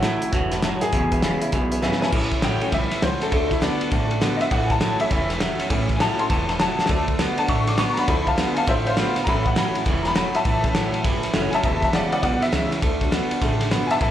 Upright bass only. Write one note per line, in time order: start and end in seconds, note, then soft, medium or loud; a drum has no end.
0.22 muted upright bass stroke medium
0.33 0.67 E1 medium
0.82 muted upright bass stroke medium
0.93 1.27 E1 loud
1.42 muted upright bass stroke medium
1.53 1.87 B1 loud
2.02 muted upright bass stroke medium
2.13 2.26 A1 loud
2.43 2.59 A1 medium
2.62 muted upright bass stroke medium
2.73 2.89 B1 medium
3.02 3.18 C#2 medium
3.21 muted upright bass stroke medium
3.32 3.66 D2 loud
3.81 muted upright bass stroke medium
3.92 4.26 A1 medium
4.41 muted upright bass stroke medium
4.51 4.85 A1 loud
5.00 muted upright bass stroke medium
5.11 5.45 E1 medium
5.59 muted upright bass stroke medium
5.70 6.04 A1 medium
6.19 muted upright bass stroke medium
6.30 6.64 E1 medium
6.78 muted upright bass stroke medium
6.89 7.23 D2 loud
7.38 muted upright bass stroke medium
7.48 7.83 A1 medium
7.97 muted upright bass stroke medium
8.08 8.42 D2 loud
8.57 muted upright bass stroke medium
8.68 9.02 A1 medium
9.16 muted upright bass stroke medium
9.27 9.61 A1 loud
9.75 muted upright bass stroke medium
9.86 10.20 E1 medium
10.34 muted upright bass stroke medium
10.45 10.59 A1 loud
10.76 10.91 A1 medium
10.94 muted upright bass stroke medium
11.05 11.21 G1 medium
11.23 muted upright bass stroke medium
11.34 11.50 F#1 medium
11.53 muted upright bass stroke medium
11.64 11.98 E1 loud
12.12 muted upright bass stroke medium
12.23 12.39 B1 loud
12.42 muted upright bass stroke medium
12.52 12.69 C#2 medium
12.82 13.16 D2 loud
13.30 muted upright bass stroke medium
13.41 13.75 A1 medium
13.90 muted upright bass stroke medium
14.01 14.11 A1 loud